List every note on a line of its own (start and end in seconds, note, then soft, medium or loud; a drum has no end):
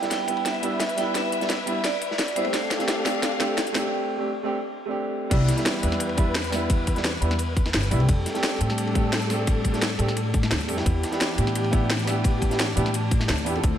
0.00 0.25 G3 medium
0.00 0.26 B3 medium
0.00 0.26 D4 medium
0.00 0.27 E4 medium
0.00 2.51 B4 medium
0.00 2.51 E5 medium
0.00 snare medium
0.00 closed hi-hat soft
0.11 0.47 G5 loud
0.11 snare soft
0.11 snare loud
0.11 closed hi-hat medium
0.11 ride medium
0.27 0.60 G3 medium
0.27 0.61 B3 medium
0.27 0.61 D4 medium
0.27 0.62 E4 medium
0.27 closed hi-hat medium
0.27 ride medium
0.37 ride soft
0.46 0.94 E5 loud
0.46 snare medium
0.46 closed hi-hat medium
0.46 ride medium
0.54 ride soft
0.62 0.79 G3 medium
0.62 0.79 B3 medium
0.62 0.80 D4 medium
0.62 0.80 E4 loud
0.62 closed hi-hat medium
0.62 ride medium
0.80 snare loud
0.80 snare medium
0.80 closed hi-hat medium
0.80 ride medium
0.89 closed hi-hat soft
0.89 ride soft
0.95 1.38 G3 medium
0.95 1.39 B3 medium
0.95 1.40 D4 medium
0.95 1.14 G5 loud
0.95 snare soft
0.95 closed hi-hat medium
0.95 ride medium
1.00 1.40 E4 medium
1.14 1.80 E5 loud
1.14 snare medium
1.14 closed hi-hat medium
1.14 ride medium
1.32 closed hi-hat medium
1.32 ride medium
1.40 1.51 G3 medium
1.40 1.51 B3 medium
1.40 1.52 D4 medium
1.40 1.52 E4 medium
1.40 snare medium
1.40 closed hi-hat soft
1.49 snare loud
1.49 snare medium
1.49 closed hi-hat medium
1.49 ride medium
1.66 1.77 G3 medium
1.66 1.77 B3 medium
1.66 1.78 D4 medium
1.66 1.78 E4 medium
1.66 closed hi-hat medium
1.66 ride medium
1.84 2.38 D5 medium
1.84 snare medium
1.84 closed hi-hat medium
1.84 ride medium
2.01 closed hi-hat medium
2.01 ride medium
2.11 snare medium
2.18 snare loud
2.18 snare medium
2.18 closed hi-hat medium
2.18 ride medium
2.28 closed hi-hat soft
2.28 ride soft
2.35 2.43 G3 medium
2.35 2.43 B3 medium
2.35 2.43 D4 medium
2.35 2.44 E4 loud
2.35 2.69 C5 medium
2.35 closed hi-hat medium
2.35 ride medium
2.44 2.77 A3 medium
2.44 2.78 C4 medium
2.44 2.78 D4 medium
2.44 2.79 G4 medium
2.44 ride soft
2.54 3.91 D4 medium
2.54 3.91 G4 medium
2.54 3.91 A4 medium
2.54 3.91 F5 medium
2.54 snare medium
2.54 closed hi-hat medium
2.54 ride medium
2.71 snare medium
2.71 snare soft
2.71 closed hi-hat medium
2.71 ride medium
2.79 3.03 A3 medium
2.79 3.03 C4 medium
2.79 3.04 D4 medium
2.79 3.04 G4 medium
2.79 snare medium
2.79 closed hi-hat soft
2.88 snare loud
2.88 snare medium
2.88 closed hi-hat medium
2.88 ride medium
3.04 3.37 A3 medium
3.04 3.38 C4 medium
3.04 3.39 D4 medium
3.04 3.39 G4 medium
3.04 snare medium
3.04 open hi-hat medium
3.04 ride medium
3.14 ride soft
3.23 snare medium
3.23 closed hi-hat loud
3.23 ride medium
3.32 ride soft
3.39 3.56 A3 loud
3.39 3.57 C4 medium
3.39 3.57 D4 medium
3.39 3.57 G4 loud
3.39 snare medium
3.39 closed hi-hat medium
3.39 ride medium
3.57 snare loud
3.57 snare medium
3.57 closed hi-hat medium
3.57 ride medium
3.67 closed hi-hat soft
3.67 ride soft
3.72 4.15 A3 medium
3.72 4.16 C4 medium
3.72 4.17 D4 medium
3.72 snare soft
3.72 snare medium
3.72 open hi-hat medium
3.72 ride medium
3.78 4.18 G4 loud
4.17 4.28 A3 medium
4.17 4.29 C4 medium
4.17 4.29 D4 medium
4.17 4.29 G4 medium
4.43 4.54 A3 medium
4.43 4.55 C4 medium
4.43 4.55 D4 medium
4.43 4.56 G4 loud
4.86 5.29 A3 medium
4.86 5.30 C4 medium
4.86 5.30 D4 medium
4.91 5.31 G4 medium
5.30 5.47 C2 loud
5.30 8.06 E3 medium
5.30 5.53 G3 loud
5.30 5.54 B3 medium
5.30 5.54 D4 medium
5.30 5.55 E4 loud
5.30 8.06 B4 medium
5.30 kick loud
5.30 closed hi-hat medium
5.30 crash loud
5.30 ride medium
5.48 snare medium
5.48 closed hi-hat medium
5.48 ride medium
5.56 5.80 G3 medium
5.56 5.81 B3 medium
5.56 5.81 D4 medium
5.56 5.82 E4 medium
5.56 snare medium
5.56 closed hi-hat soft
5.65 snare loud
5.65 closed hi-hat loud
5.65 ride medium
5.82 7.21 E2 medium
5.82 6.15 G3 medium
5.82 6.16 B3 medium
5.82 6.16 D4 medium
5.82 6.16 E4 medium
5.82 closed hi-hat medium
5.82 ride medium
5.92 snare soft
5.92 ride soft
6.00 closed hi-hat loud
6.00 ride medium
6.09 ride soft
6.17 6.34 G3 loud
6.17 6.34 B3 medium
6.17 6.35 D4 medium
6.17 6.35 E4 loud
6.17 kick loud
6.17 closed hi-hat medium
6.17 ride medium
6.35 snare loud
6.35 closed hi-hat medium
6.35 ride medium
6.44 closed hi-hat soft
6.44 ride soft
6.50 6.93 G3 medium
6.50 6.94 B3 medium
6.50 6.95 D4 medium
6.50 snare soft
6.50 snare medium
6.50 open hi-hat medium
6.50 ride medium
6.55 6.95 E4 loud
6.70 kick loud
6.70 closed hi-hat medium
6.70 ride medium
6.87 kick medium
6.87 closed hi-hat medium
6.87 ride medium
6.95 7.06 G3 medium
6.95 7.06 B3 medium
6.95 7.06 D4 medium
6.95 7.07 E4 medium
6.95 snare medium
6.95 closed hi-hat soft
7.04 snare loud
7.04 closed hi-hat loud
7.04 ride medium
7.21 7.73 E2 loud
7.21 7.32 G3 medium
7.21 7.32 B3 medium
7.21 7.33 D4 medium
7.21 7.33 E4 loud
7.21 closed hi-hat medium
7.21 ride medium
7.31 snare medium
7.39 closed hi-hat loud
7.39 ride medium
7.57 kick loud
7.57 closed hi-hat medium
7.57 ride medium
7.66 snare medium
7.66 snare soft
7.73 7.93 G1 medium
7.73 snare loud
7.73 closed hi-hat loud
7.73 ride medium
7.83 closed hi-hat soft
7.83 ride soft
7.90 8.07 C2 loud
7.90 7.98 G3 medium
7.90 7.98 B3 medium
7.90 7.98 D4 medium
7.90 7.99 E4 loud
7.90 open hi-hat medium
7.90 ride medium
7.99 8.32 A3 medium
7.99 8.33 C4 medium
7.99 8.33 D4 medium
7.99 8.33 G4 medium
7.99 ride soft
8.09 8.24 F2 loud
8.09 10.83 G3 medium
8.09 10.83 D4 medium
8.09 10.83 A4 medium
8.09 kick loud
8.09 closed hi-hat medium
8.09 ride loud
8.26 snare medium
8.26 closed hi-hat medium
8.26 ride medium
8.34 8.58 A3 medium
8.34 8.58 C4 medium
8.34 8.59 D4 medium
8.34 8.59 G4 medium
8.34 snare medium
8.34 closed hi-hat soft
8.43 snare loud
8.43 closed hi-hat medium
8.43 ride medium
8.59 9.98 A2 loud
8.59 8.92 A3 medium
8.59 8.93 C4 medium
8.59 8.94 D4 medium
8.59 8.94 G4 medium
8.59 closed hi-hat medium
8.59 ride medium
8.70 snare soft
8.70 ride soft
8.78 closed hi-hat medium
8.78 ride medium
8.87 ride soft
8.94 9.11 A3 medium
8.94 9.12 C4 medium
8.94 9.12 D4 medium
8.94 9.12 G4 loud
8.94 kick loud
8.94 closed hi-hat medium
8.94 ride medium
9.13 snare loud
9.13 closed hi-hat medium
9.13 ride medium
9.22 closed hi-hat soft
9.22 ride soft
9.28 9.70 A3 medium
9.28 9.71 C4 medium
9.28 9.72 D4 medium
9.28 snare soft
9.28 open hi-hat medium
9.28 ride medium
9.33 9.73 G4 loud
9.47 kick loud
9.47 closed hi-hat medium
9.47 ride loud
9.64 kick medium
9.64 closed hi-hat medium
9.64 ride medium
9.73 9.83 A3 medium
9.73 9.84 C4 medium
9.73 9.84 D4 medium
9.73 9.84 G4 medium
9.73 snare medium
9.73 closed hi-hat soft
9.81 snare loud
9.81 closed hi-hat medium
9.81 ride medium
9.98 10.50 A2 loud
9.98 10.09 A3 medium
9.98 10.10 C4 medium
9.98 10.10 D4 medium
9.98 10.11 G4 loud
9.98 closed hi-hat medium
9.98 ride medium
10.09 snare soft
10.17 closed hi-hat medium
10.17 ride medium
10.34 kick loud
10.34 closed hi-hat medium
10.34 ride medium
10.43 snare medium
10.43 snare soft
10.50 10.69 D2 medium
10.50 snare loud
10.50 closed hi-hat medium
10.50 ride medium
10.60 closed hi-hat soft
10.60 ride soft
10.67 10.84 F2 medium
10.67 10.75 A3 medium
10.67 10.75 C4 medium
10.67 10.76 D4 medium
10.67 10.76 G4 medium
10.67 open hi-hat medium
10.67 ride medium
10.76 11.10 B3 medium
10.76 11.10 D4 medium
10.76 11.11 E4 medium
10.76 11.11 G4 medium
10.76 snare loud
10.76 ride medium
10.86 11.02 E2 loud
10.86 13.61 E3 medium
10.86 13.78 D4 medium
10.86 13.61 G4 medium
10.86 kick loud
10.86 closed hi-hat medium
10.86 ride medium
11.03 snare medium
11.03 closed hi-hat medium
11.03 ride medium
11.11 11.35 B3 medium
11.11 11.36 D4 medium
11.11 11.36 E4 medium
11.11 11.37 G4 medium
11.11 snare medium
11.11 closed hi-hat soft
11.21 snare loud
11.21 closed hi-hat medium
11.21 ride medium
11.37 12.75 A2 loud
11.37 11.70 B3 medium
11.37 11.71 D4 medium
11.37 11.71 E4 medium
11.37 11.71 G4 medium
11.37 closed hi-hat medium
11.37 ride medium
11.47 snare soft
11.47 ride soft
11.55 closed hi-hat medium
11.55 ride loud
11.64 ride soft
11.71 11.89 B3 loud
11.71 11.89 D4 medium
11.71 11.90 E4 medium
11.71 11.90 G4 loud
11.71 kick loud
11.71 closed hi-hat medium
11.71 ride medium
11.90 snare loud
11.90 closed hi-hat medium
11.90 ride medium
11.99 closed hi-hat soft
11.99 ride soft
12.05 12.48 B3 medium
12.05 12.49 D4 medium
12.05 12.49 E4 medium
12.05 snare soft
12.05 open hi-hat medium
12.05 ride medium
12.10 12.50 G4 loud
12.24 kick loud
12.24 closed hi-hat medium
12.24 ride medium
12.42 kick medium
12.42 closed hi-hat medium
12.42 ride medium
12.50 12.60 B3 medium
12.50 12.61 D4 medium
12.50 12.61 E4 medium
12.50 12.62 G4 medium
12.50 snare medium
12.50 closed hi-hat soft
12.59 snare loud
12.59 closed hi-hat medium
12.59 ride medium
12.76 13.28 A2 medium
12.76 12.87 B3 medium
12.76 12.87 D4 medium
12.76 12.88 E4 medium
12.76 12.88 G4 loud
12.76 closed hi-hat medium
12.76 ride medium
12.86 snare soft
12.94 closed hi-hat medium
12.94 ride medium
13.11 kick loud
13.11 closed hi-hat medium
13.11 ride medium
13.20 snare medium
13.20 snare soft
13.28 13.46 D2 medium
13.28 snare loud
13.28 closed hi-hat medium
13.28 ride medium
13.37 closed hi-hat soft
13.37 ride soft
13.45 13.62 E2 loud
13.45 13.52 B3 medium
13.45 13.53 D4 medium
13.45 13.53 E4 medium
13.45 13.54 G4 medium
13.45 open hi-hat medium
13.45 ride medium
13.54 13.78 C4 medium
13.54 13.78 E4 medium
13.54 13.78 F4 medium
13.54 13.78 A4 medium
13.54 ride soft
13.63 13.78 D2 loud
13.63 13.78 F3 medium
13.63 13.78 C5 medium
13.63 kick loud
13.63 closed hi-hat medium
13.63 ride medium